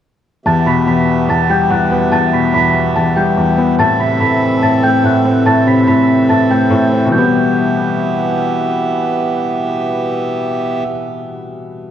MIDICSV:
0, 0, Header, 1, 4, 480
1, 0, Start_track
1, 0, Key_signature, 1, "minor"
1, 0, Tempo, 416667
1, 525, Time_signature, 4, 2, 24, 8
1, 13718, End_track
2, 0, Start_track
2, 0, Title_t, "Celesta"
2, 0, Program_c, 0, 8
2, 527, Note_on_c, 0, 81, 102
2, 538, Note_on_c, 0, 93, 85
2, 743, Note_off_c, 0, 81, 0
2, 749, Note_off_c, 0, 93, 0
2, 763, Note_on_c, 0, 83, 79
2, 772, Note_on_c, 0, 95, 56
2, 981, Note_off_c, 0, 83, 0
2, 986, Note_off_c, 0, 95, 0
2, 1004, Note_on_c, 0, 83, 77
2, 1014, Note_on_c, 0, 95, 61
2, 1456, Note_off_c, 0, 83, 0
2, 1461, Note_off_c, 0, 95, 0
2, 1486, Note_on_c, 0, 81, 81
2, 1495, Note_on_c, 0, 93, 64
2, 1703, Note_off_c, 0, 81, 0
2, 1708, Note_off_c, 0, 93, 0
2, 1724, Note_on_c, 0, 79, 77
2, 1734, Note_on_c, 0, 91, 66
2, 1942, Note_off_c, 0, 79, 0
2, 1947, Note_off_c, 0, 91, 0
2, 1964, Note_on_c, 0, 78, 80
2, 1973, Note_on_c, 0, 90, 58
2, 2181, Note_off_c, 0, 78, 0
2, 2187, Note_off_c, 0, 90, 0
2, 2440, Note_on_c, 0, 81, 108
2, 2450, Note_on_c, 0, 93, 82
2, 2660, Note_off_c, 0, 81, 0
2, 2665, Note_off_c, 0, 93, 0
2, 2686, Note_on_c, 0, 83, 83
2, 2696, Note_on_c, 0, 95, 62
2, 2903, Note_off_c, 0, 83, 0
2, 2908, Note_off_c, 0, 95, 0
2, 2923, Note_on_c, 0, 83, 75
2, 2932, Note_on_c, 0, 95, 63
2, 3375, Note_off_c, 0, 83, 0
2, 3380, Note_off_c, 0, 95, 0
2, 3408, Note_on_c, 0, 81, 90
2, 3416, Note_on_c, 0, 93, 63
2, 3623, Note_off_c, 0, 81, 0
2, 3628, Note_off_c, 0, 93, 0
2, 3639, Note_on_c, 0, 79, 86
2, 3649, Note_on_c, 0, 91, 59
2, 4319, Note_off_c, 0, 79, 0
2, 4324, Note_off_c, 0, 91, 0
2, 4362, Note_on_c, 0, 81, 114
2, 4372, Note_on_c, 0, 93, 86
2, 4581, Note_off_c, 0, 81, 0
2, 4586, Note_off_c, 0, 93, 0
2, 4603, Note_on_c, 0, 83, 79
2, 4613, Note_on_c, 0, 95, 52
2, 4821, Note_off_c, 0, 83, 0
2, 4827, Note_off_c, 0, 95, 0
2, 4841, Note_on_c, 0, 83, 77
2, 4850, Note_on_c, 0, 95, 66
2, 5294, Note_off_c, 0, 83, 0
2, 5299, Note_off_c, 0, 95, 0
2, 5323, Note_on_c, 0, 81, 79
2, 5332, Note_on_c, 0, 93, 64
2, 5541, Note_off_c, 0, 81, 0
2, 5546, Note_off_c, 0, 93, 0
2, 5560, Note_on_c, 0, 79, 83
2, 5569, Note_on_c, 0, 91, 64
2, 5780, Note_off_c, 0, 79, 0
2, 5784, Note_off_c, 0, 91, 0
2, 5809, Note_on_c, 0, 78, 76
2, 5819, Note_on_c, 0, 90, 65
2, 6024, Note_off_c, 0, 78, 0
2, 6030, Note_off_c, 0, 90, 0
2, 6287, Note_on_c, 0, 81, 102
2, 6296, Note_on_c, 0, 93, 80
2, 6503, Note_off_c, 0, 81, 0
2, 6508, Note_off_c, 0, 93, 0
2, 6531, Note_on_c, 0, 83, 81
2, 6539, Note_on_c, 0, 95, 68
2, 6745, Note_off_c, 0, 83, 0
2, 6750, Note_off_c, 0, 95, 0
2, 6765, Note_on_c, 0, 83, 85
2, 6775, Note_on_c, 0, 95, 65
2, 7217, Note_off_c, 0, 83, 0
2, 7222, Note_off_c, 0, 95, 0
2, 7246, Note_on_c, 0, 81, 79
2, 7255, Note_on_c, 0, 93, 67
2, 7463, Note_off_c, 0, 81, 0
2, 7468, Note_off_c, 0, 93, 0
2, 7492, Note_on_c, 0, 79, 83
2, 7501, Note_on_c, 0, 91, 67
2, 8166, Note_off_c, 0, 79, 0
2, 8170, Note_off_c, 0, 91, 0
2, 8205, Note_on_c, 0, 91, 86
2, 9599, Note_off_c, 0, 91, 0
2, 13718, End_track
3, 0, Start_track
3, 0, Title_t, "Harmonium"
3, 0, Program_c, 1, 20
3, 524, Note_on_c, 1, 52, 78
3, 524, Note_on_c, 1, 76, 86
3, 525, Note_on_c, 1, 59, 74
3, 525, Note_on_c, 1, 67, 74
3, 4326, Note_off_c, 1, 67, 0
3, 4326, Note_off_c, 1, 76, 0
3, 4327, Note_off_c, 1, 59, 0
3, 4366, Note_on_c, 1, 60, 75
3, 4366, Note_on_c, 1, 69, 73
3, 4366, Note_on_c, 1, 76, 89
3, 8159, Note_off_c, 1, 52, 0
3, 8167, Note_off_c, 1, 60, 0
3, 8167, Note_off_c, 1, 69, 0
3, 8167, Note_off_c, 1, 76, 0
3, 8206, Note_on_c, 1, 59, 74
3, 8206, Note_on_c, 1, 76, 91
3, 8207, Note_on_c, 1, 52, 82
3, 8207, Note_on_c, 1, 67, 75
3, 12481, Note_off_c, 1, 59, 0
3, 12481, Note_off_c, 1, 76, 0
3, 12482, Note_off_c, 1, 52, 0
3, 12482, Note_off_c, 1, 67, 0
3, 13718, End_track
4, 0, Start_track
4, 0, Title_t, "Felt piano"
4, 0, Program_c, 2, 0
4, 527, Note_on_c, 2, 40, 82
4, 757, Control_c, 2, 64, 127
4, 764, Note_on_c, 2, 47, 82
4, 987, Note_off_c, 2, 40, 0
4, 1004, Note_on_c, 2, 40, 71
4, 1466, Note_off_c, 2, 40, 0
4, 1483, Note_on_c, 2, 40, 79
4, 1725, Note_on_c, 2, 55, 76
4, 1946, Note_off_c, 2, 40, 0
4, 1963, Note_on_c, 2, 40, 92
4, 1965, Note_off_c, 2, 47, 0
4, 2207, Note_on_c, 2, 59, 75
4, 2427, Note_off_c, 2, 40, 0
4, 2445, Note_on_c, 2, 40, 88
4, 2689, Note_on_c, 2, 47, 73
4, 2906, Note_off_c, 2, 40, 0
4, 2923, Note_on_c, 2, 40, 71
4, 2925, Note_off_c, 2, 55, 0
4, 3391, Note_off_c, 2, 40, 0
4, 3406, Note_off_c, 2, 59, 0
4, 3408, Note_on_c, 2, 40, 68
4, 3647, Note_on_c, 2, 55, 81
4, 3867, Note_off_c, 2, 40, 0
4, 3884, Note_on_c, 2, 40, 84
4, 3887, Note_off_c, 2, 47, 0
4, 4123, Note_on_c, 2, 59, 82
4, 4362, Note_on_c, 2, 45, 88
4, 4364, Note_off_c, 2, 59, 0
4, 4365, Note_off_c, 2, 40, 0
4, 4366, Note_off_c, 2, 55, 0
4, 4378, Control_c, 2, 64, 0
4, 4547, Control_c, 2, 64, 127
4, 4608, Note_on_c, 2, 48, 78
4, 4830, Note_off_c, 2, 45, 0
4, 4847, Note_on_c, 2, 45, 66
4, 5312, Note_off_c, 2, 45, 0
4, 5330, Note_on_c, 2, 45, 62
4, 5561, Note_on_c, 2, 57, 81
4, 5786, Note_off_c, 2, 45, 0
4, 5803, Note_on_c, 2, 45, 82
4, 5807, Note_off_c, 2, 48, 0
4, 6050, Note_on_c, 2, 60, 84
4, 6269, Note_off_c, 2, 45, 0
4, 6286, Note_on_c, 2, 45, 85
4, 6527, Note_on_c, 2, 48, 70
4, 6748, Note_off_c, 2, 45, 0
4, 6763, Note_off_c, 2, 57, 0
4, 6765, Note_on_c, 2, 45, 71
4, 7229, Note_off_c, 2, 45, 0
4, 7247, Note_on_c, 2, 45, 69
4, 7248, Note_off_c, 2, 60, 0
4, 7483, Note_on_c, 2, 57, 76
4, 7706, Note_off_c, 2, 45, 0
4, 7723, Note_on_c, 2, 45, 93
4, 7726, Note_off_c, 2, 48, 0
4, 7966, Note_on_c, 2, 60, 76
4, 8136, Note_on_c, 2, 47, 79
4, 8182, Note_on_c, 2, 52, 75
4, 8204, Note_off_c, 2, 45, 0
4, 8204, Note_off_c, 2, 57, 0
4, 8206, Note_off_c, 2, 60, 0
4, 8222, Control_c, 2, 64, 0
4, 8228, Note_on_c, 2, 55, 78
4, 8274, Note_on_c, 2, 59, 89
4, 8428, Control_c, 2, 64, 127
4, 12411, Note_off_c, 2, 47, 0
4, 12457, Note_off_c, 2, 52, 0
4, 12503, Note_off_c, 2, 55, 0
4, 12550, Note_off_c, 2, 59, 0
4, 13718, End_track
0, 0, End_of_file